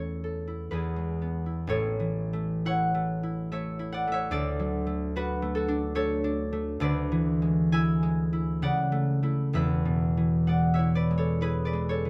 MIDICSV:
0, 0, Header, 1, 2, 480
1, 0, Start_track
1, 0, Key_signature, 3, "major"
1, 0, Tempo, 967742
1, 836, Time_signature, 3, 2, 24, 8
1, 1308, Tempo, 872093
1, 1788, Tempo, 823045
1, 3708, Tempo, 909091
1, 5148, Tempo, 944882
1, 6453, End_track
2, 0, Start_track
2, 0, Title_t, "Harp"
2, 0, Program_c, 0, 46
2, 0, Note_on_c, 0, 40, 56
2, 0, Note_on_c, 0, 57, 42
2, 0, Note_on_c, 0, 61, 49
2, 0, Note_on_c, 0, 64, 51
2, 0, Note_on_c, 0, 69, 46
2, 0, Note_on_c, 0, 73, 45
2, 0, Note_on_c, 0, 76, 76
2, 112, Note_off_c, 0, 69, 0
2, 118, Note_on_c, 0, 69, 48
2, 230, Note_off_c, 0, 64, 0
2, 236, Note_on_c, 0, 64, 45
2, 349, Note_off_c, 0, 40, 0
2, 351, Note_on_c, 0, 71, 74
2, 355, Note_on_c, 0, 40, 56
2, 362, Note_on_c, 0, 68, 57
2, 375, Note_off_c, 0, 57, 0
2, 377, Note_off_c, 0, 73, 0
2, 378, Note_off_c, 0, 61, 0
2, 379, Note_off_c, 0, 69, 0
2, 478, Note_on_c, 0, 56, 47
2, 603, Note_on_c, 0, 59, 47
2, 718, Note_off_c, 0, 64, 0
2, 724, Note_on_c, 0, 64, 43
2, 830, Note_on_c, 0, 33, 82
2, 836, Note_on_c, 0, 45, 76
2, 840, Note_on_c, 0, 73, 103
2, 843, Note_on_c, 0, 69, 78
2, 851, Note_off_c, 0, 71, 0
2, 853, Note_off_c, 0, 40, 0
2, 854, Note_off_c, 0, 56, 0
2, 855, Note_off_c, 0, 59, 0
2, 857, Note_off_c, 0, 68, 0
2, 990, Note_on_c, 0, 52, 52
2, 1157, Note_on_c, 0, 57, 68
2, 1305, Note_off_c, 0, 76, 0
2, 1312, Note_off_c, 0, 64, 0
2, 1317, Note_on_c, 0, 64, 62
2, 1319, Note_off_c, 0, 73, 0
2, 1321, Note_on_c, 0, 78, 112
2, 1326, Note_on_c, 0, 73, 81
2, 1471, Note_off_c, 0, 57, 0
2, 1478, Note_on_c, 0, 57, 66
2, 1629, Note_off_c, 0, 64, 0
2, 1636, Note_on_c, 0, 64, 58
2, 1787, Note_off_c, 0, 57, 0
2, 1792, Note_on_c, 0, 57, 63
2, 1793, Note_off_c, 0, 73, 0
2, 1795, Note_on_c, 0, 76, 78
2, 1800, Note_on_c, 0, 73, 66
2, 1946, Note_off_c, 0, 64, 0
2, 1953, Note_on_c, 0, 64, 68
2, 2023, Note_off_c, 0, 78, 0
2, 2030, Note_on_c, 0, 78, 106
2, 2040, Note_on_c, 0, 74, 81
2, 2111, Note_off_c, 0, 57, 0
2, 2118, Note_on_c, 0, 57, 65
2, 2137, Note_off_c, 0, 76, 0
2, 2144, Note_on_c, 0, 76, 98
2, 2146, Note_off_c, 0, 73, 0
2, 2153, Note_on_c, 0, 73, 78
2, 2235, Note_off_c, 0, 78, 0
2, 2251, Note_off_c, 0, 74, 0
2, 2254, Note_on_c, 0, 38, 80
2, 2256, Note_on_c, 0, 50, 87
2, 2259, Note_on_c, 0, 74, 114
2, 2260, Note_off_c, 0, 69, 0
2, 2267, Note_on_c, 0, 69, 74
2, 2286, Note_off_c, 0, 33, 0
2, 2290, Note_off_c, 0, 45, 0
2, 2290, Note_off_c, 0, 52, 0
2, 2290, Note_off_c, 0, 73, 0
2, 2291, Note_off_c, 0, 64, 0
2, 2350, Note_off_c, 0, 76, 0
2, 2421, Note_on_c, 0, 54, 68
2, 2572, Note_off_c, 0, 57, 0
2, 2579, Note_on_c, 0, 57, 69
2, 2749, Note_on_c, 0, 62, 60
2, 2753, Note_on_c, 0, 71, 112
2, 2755, Note_on_c, 0, 66, 91
2, 2897, Note_off_c, 0, 57, 0
2, 2904, Note_on_c, 0, 57, 75
2, 2971, Note_off_c, 0, 69, 0
2, 2978, Note_on_c, 0, 69, 100
2, 2981, Note_off_c, 0, 66, 0
2, 2988, Note_on_c, 0, 66, 72
2, 3049, Note_off_c, 0, 62, 0
2, 3056, Note_on_c, 0, 62, 77
2, 3152, Note_off_c, 0, 71, 0
2, 3205, Note_off_c, 0, 57, 0
2, 3211, Note_on_c, 0, 57, 75
2, 3212, Note_off_c, 0, 69, 0
2, 3214, Note_on_c, 0, 73, 121
2, 3219, Note_on_c, 0, 69, 93
2, 3374, Note_off_c, 0, 62, 0
2, 3381, Note_on_c, 0, 62, 83
2, 3540, Note_off_c, 0, 57, 0
2, 3547, Note_on_c, 0, 57, 73
2, 3700, Note_off_c, 0, 38, 0
2, 3707, Note_off_c, 0, 50, 0
2, 3707, Note_on_c, 0, 38, 85
2, 3708, Note_off_c, 0, 74, 0
2, 3712, Note_on_c, 0, 50, 98
2, 3716, Note_on_c, 0, 74, 104
2, 3723, Note_off_c, 0, 54, 0
2, 3723, Note_on_c, 0, 71, 83
2, 3726, Note_off_c, 0, 69, 0
2, 3729, Note_off_c, 0, 57, 0
2, 3729, Note_off_c, 0, 66, 0
2, 3875, Note_on_c, 0, 52, 72
2, 4035, Note_on_c, 0, 56, 70
2, 4044, Note_off_c, 0, 73, 0
2, 4195, Note_on_c, 0, 80, 114
2, 4197, Note_on_c, 0, 64, 77
2, 4205, Note_on_c, 0, 76, 89
2, 4349, Note_off_c, 0, 56, 0
2, 4356, Note_on_c, 0, 56, 77
2, 4507, Note_off_c, 0, 64, 0
2, 4514, Note_on_c, 0, 64, 69
2, 4669, Note_off_c, 0, 74, 0
2, 4669, Note_on_c, 0, 49, 83
2, 4672, Note_on_c, 0, 78, 107
2, 4676, Note_on_c, 0, 74, 89
2, 4686, Note_off_c, 0, 38, 0
2, 4687, Note_off_c, 0, 56, 0
2, 4687, Note_off_c, 0, 62, 0
2, 4687, Note_off_c, 0, 80, 0
2, 4689, Note_off_c, 0, 50, 0
2, 4691, Note_off_c, 0, 52, 0
2, 4694, Note_off_c, 0, 71, 0
2, 4826, Note_on_c, 0, 57, 74
2, 4983, Note_off_c, 0, 57, 0
2, 4984, Note_off_c, 0, 64, 0
2, 4988, Note_on_c, 0, 57, 57
2, 4992, Note_on_c, 0, 64, 60
2, 5149, Note_on_c, 0, 28, 71
2, 5150, Note_off_c, 0, 76, 0
2, 5154, Note_on_c, 0, 40, 76
2, 5158, Note_on_c, 0, 76, 102
2, 5162, Note_on_c, 0, 71, 78
2, 5168, Note_off_c, 0, 49, 0
2, 5169, Note_off_c, 0, 57, 0
2, 5171, Note_off_c, 0, 74, 0
2, 5313, Note_on_c, 0, 47, 60
2, 5475, Note_on_c, 0, 52, 59
2, 5488, Note_off_c, 0, 78, 0
2, 5627, Note_on_c, 0, 56, 58
2, 5627, Note_on_c, 0, 78, 92
2, 5635, Note_on_c, 0, 74, 75
2, 5756, Note_off_c, 0, 76, 0
2, 5762, Note_on_c, 0, 76, 87
2, 5768, Note_on_c, 0, 73, 65
2, 5782, Note_off_c, 0, 64, 0
2, 5788, Note_on_c, 0, 64, 63
2, 5833, Note_off_c, 0, 78, 0
2, 5866, Note_off_c, 0, 74, 0
2, 5871, Note_off_c, 0, 71, 0
2, 5872, Note_on_c, 0, 74, 97
2, 5877, Note_on_c, 0, 71, 73
2, 5943, Note_off_c, 0, 56, 0
2, 5949, Note_on_c, 0, 56, 60
2, 5960, Note_off_c, 0, 76, 0
2, 5979, Note_off_c, 0, 73, 0
2, 5985, Note_on_c, 0, 73, 80
2, 5990, Note_on_c, 0, 69, 61
2, 6074, Note_off_c, 0, 74, 0
2, 6099, Note_off_c, 0, 64, 0
2, 6100, Note_off_c, 0, 71, 0
2, 6103, Note_on_c, 0, 64, 62
2, 6108, Note_on_c, 0, 71, 97
2, 6113, Note_on_c, 0, 68, 66
2, 6190, Note_off_c, 0, 73, 0
2, 6227, Note_on_c, 0, 74, 84
2, 6228, Note_off_c, 0, 71, 0
2, 6234, Note_on_c, 0, 71, 71
2, 6261, Note_off_c, 0, 56, 0
2, 6267, Note_on_c, 0, 56, 66
2, 6348, Note_on_c, 0, 73, 84
2, 6349, Note_off_c, 0, 69, 0
2, 6356, Note_on_c, 0, 69, 70
2, 6423, Note_off_c, 0, 52, 0
2, 6430, Note_on_c, 0, 52, 56
2, 6431, Note_off_c, 0, 74, 0
2, 6453, Note_off_c, 0, 28, 0
2, 6453, Note_off_c, 0, 40, 0
2, 6453, Note_off_c, 0, 47, 0
2, 6453, Note_off_c, 0, 52, 0
2, 6453, Note_off_c, 0, 56, 0
2, 6453, Note_off_c, 0, 64, 0
2, 6453, Note_off_c, 0, 68, 0
2, 6453, Note_off_c, 0, 69, 0
2, 6453, Note_off_c, 0, 71, 0
2, 6453, Note_off_c, 0, 73, 0
2, 6453, End_track
0, 0, End_of_file